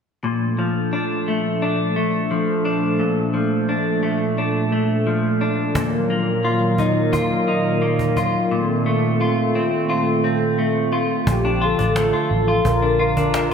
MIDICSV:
0, 0, Header, 1, 6, 480
1, 0, Start_track
1, 0, Key_signature, -2, "major"
1, 0, Tempo, 689655
1, 166, Time_signature, 4, 2, 24, 8
1, 9422, End_track
2, 0, Start_track
2, 0, Title_t, "Soft synth lead"
2, 0, Program_c, 0, 80
2, 7869, Note_on_c, 0, 67, 94
2, 8105, Note_on_c, 0, 69, 98
2, 8116, Note_off_c, 0, 67, 0
2, 8818, Note_on_c, 0, 70, 100
2, 8828, Note_off_c, 0, 69, 0
2, 9052, Note_off_c, 0, 70, 0
2, 9057, Note_on_c, 0, 70, 88
2, 9422, Note_off_c, 0, 70, 0
2, 9422, End_track
3, 0, Start_track
3, 0, Title_t, "Clean electric guitar"
3, 0, Program_c, 1, 27
3, 167, Note_on_c, 1, 46, 61
3, 408, Note_on_c, 1, 53, 51
3, 646, Note_on_c, 1, 62, 49
3, 891, Note_on_c, 1, 57, 44
3, 1121, Note_off_c, 1, 62, 0
3, 1130, Note_on_c, 1, 62, 53
3, 1357, Note_off_c, 1, 57, 0
3, 1366, Note_on_c, 1, 57, 44
3, 1604, Note_off_c, 1, 53, 0
3, 1607, Note_on_c, 1, 53, 52
3, 1838, Note_off_c, 1, 62, 0
3, 1846, Note_on_c, 1, 62, 51
3, 2076, Note_off_c, 1, 46, 0
3, 2085, Note_on_c, 1, 46, 66
3, 2320, Note_off_c, 1, 53, 0
3, 2323, Note_on_c, 1, 53, 52
3, 2559, Note_off_c, 1, 62, 0
3, 2568, Note_on_c, 1, 62, 51
3, 2796, Note_off_c, 1, 57, 0
3, 2804, Note_on_c, 1, 57, 53
3, 3041, Note_off_c, 1, 62, 0
3, 3050, Note_on_c, 1, 62, 54
3, 3279, Note_off_c, 1, 57, 0
3, 3287, Note_on_c, 1, 57, 49
3, 3524, Note_off_c, 1, 53, 0
3, 3526, Note_on_c, 1, 53, 52
3, 3758, Note_off_c, 1, 62, 0
3, 3767, Note_on_c, 1, 62, 52
3, 3999, Note_off_c, 1, 46, 0
3, 4007, Note_on_c, 1, 46, 70
3, 4054, Note_off_c, 1, 57, 0
3, 4054, Note_off_c, 1, 62, 0
3, 4246, Note_on_c, 1, 58, 52
3, 4486, Note_on_c, 1, 65, 51
3, 4724, Note_on_c, 1, 63, 49
3, 4745, Note_off_c, 1, 53, 0
3, 4958, Note_off_c, 1, 65, 0
3, 4961, Note_on_c, 1, 65, 57
3, 5202, Note_off_c, 1, 63, 0
3, 5204, Note_on_c, 1, 63, 50
3, 5432, Note_off_c, 1, 58, 0
3, 5440, Note_on_c, 1, 58, 52
3, 5683, Note_off_c, 1, 65, 0
3, 5686, Note_on_c, 1, 65, 55
3, 5918, Note_off_c, 1, 46, 0
3, 5926, Note_on_c, 1, 46, 72
3, 5971, Note_off_c, 1, 58, 0
3, 6167, Note_on_c, 1, 57, 55
3, 6188, Note_off_c, 1, 63, 0
3, 6406, Note_off_c, 1, 65, 0
3, 6409, Note_on_c, 1, 65, 46
3, 6649, Note_on_c, 1, 60, 50
3, 6884, Note_off_c, 1, 65, 0
3, 6887, Note_on_c, 1, 65, 53
3, 7120, Note_off_c, 1, 60, 0
3, 7128, Note_on_c, 1, 60, 49
3, 7364, Note_off_c, 1, 57, 0
3, 7367, Note_on_c, 1, 57, 48
3, 7601, Note_off_c, 1, 65, 0
3, 7604, Note_on_c, 1, 65, 55
3, 7846, Note_off_c, 1, 46, 0
3, 7895, Note_off_c, 1, 60, 0
3, 7967, Note_on_c, 1, 62, 52
3, 8081, Note_off_c, 1, 65, 0
3, 8084, Note_on_c, 1, 65, 58
3, 8195, Note_off_c, 1, 62, 0
3, 8203, Note_on_c, 1, 62, 51
3, 8321, Note_off_c, 1, 57, 0
3, 8323, Note_on_c, 1, 57, 48
3, 8441, Note_off_c, 1, 65, 0
3, 8444, Note_on_c, 1, 65, 56
3, 8564, Note_off_c, 1, 57, 0
3, 8684, Note_off_c, 1, 65, 0
3, 8687, Note_on_c, 1, 65, 57
3, 8917, Note_off_c, 1, 62, 0
3, 8926, Note_on_c, 1, 62, 47
3, 9042, Note_off_c, 1, 65, 0
3, 9045, Note_on_c, 1, 65, 59
3, 9158, Note_off_c, 1, 62, 0
3, 9166, Note_on_c, 1, 62, 53
3, 9403, Note_off_c, 1, 65, 0
3, 9422, Note_off_c, 1, 62, 0
3, 9422, End_track
4, 0, Start_track
4, 0, Title_t, "Analog synth pad"
4, 0, Program_c, 2, 89
4, 163, Note_on_c, 2, 46, 82
4, 163, Note_on_c, 2, 53, 79
4, 163, Note_on_c, 2, 62, 69
4, 166, Note_on_c, 2, 57, 69
4, 166, Note_on_c, 2, 69, 84
4, 3977, Note_off_c, 2, 53, 0
4, 3977, Note_off_c, 2, 62, 0
4, 3978, Note_off_c, 2, 57, 0
4, 3978, Note_off_c, 2, 69, 0
4, 4006, Note_on_c, 2, 58, 73
4, 4007, Note_on_c, 2, 51, 74
4, 4008, Note_on_c, 2, 54, 71
4, 4008, Note_on_c, 2, 70, 82
4, 4012, Note_on_c, 2, 65, 75
4, 5907, Note_off_c, 2, 54, 0
4, 5907, Note_off_c, 2, 58, 0
4, 5907, Note_off_c, 2, 70, 0
4, 5920, Note_on_c, 2, 60, 73
4, 5920, Note_on_c, 2, 69, 92
4, 5923, Note_on_c, 2, 57, 75
4, 7817, Note_off_c, 2, 46, 0
4, 7819, Note_off_c, 2, 51, 0
4, 7821, Note_off_c, 2, 65, 0
4, 7823, Note_off_c, 2, 69, 0
4, 7824, Note_off_c, 2, 60, 0
4, 7825, Note_off_c, 2, 57, 0
4, 7844, Note_on_c, 2, 65, 92
4, 7847, Note_on_c, 2, 50, 80
4, 7847, Note_on_c, 2, 53, 70
4, 9422, Note_off_c, 2, 50, 0
4, 9422, Note_off_c, 2, 53, 0
4, 9422, Note_off_c, 2, 65, 0
4, 9422, End_track
5, 0, Start_track
5, 0, Title_t, "Fingered electric bass"
5, 0, Program_c, 3, 33
5, 7844, Note_on_c, 3, 34, 100
5, 8187, Note_off_c, 3, 34, 0
5, 8205, Note_on_c, 3, 33, 67
5, 8433, Note_off_c, 3, 33, 0
5, 8567, Note_on_c, 3, 33, 75
5, 8794, Note_off_c, 3, 33, 0
5, 8805, Note_on_c, 3, 34, 111
5, 9422, Note_off_c, 3, 34, 0
5, 9422, End_track
6, 0, Start_track
6, 0, Title_t, "Cajon"
6, 4003, Note_on_c, 9, 36, 97
6, 4073, Note_off_c, 9, 36, 0
6, 4722, Note_on_c, 9, 36, 45
6, 4792, Note_off_c, 9, 36, 0
6, 4964, Note_on_c, 9, 36, 72
6, 5033, Note_off_c, 9, 36, 0
6, 5563, Note_on_c, 9, 36, 46
6, 5633, Note_off_c, 9, 36, 0
6, 5684, Note_on_c, 9, 36, 50
6, 5754, Note_off_c, 9, 36, 0
6, 7844, Note_on_c, 9, 36, 100
6, 7914, Note_off_c, 9, 36, 0
6, 8206, Note_on_c, 9, 36, 53
6, 8276, Note_off_c, 9, 36, 0
6, 8323, Note_on_c, 9, 38, 95
6, 8393, Note_off_c, 9, 38, 0
6, 8805, Note_on_c, 9, 36, 78
6, 8874, Note_off_c, 9, 36, 0
6, 9166, Note_on_c, 9, 36, 61
6, 9235, Note_off_c, 9, 36, 0
6, 9284, Note_on_c, 9, 38, 91
6, 9354, Note_off_c, 9, 38, 0
6, 9422, End_track
0, 0, End_of_file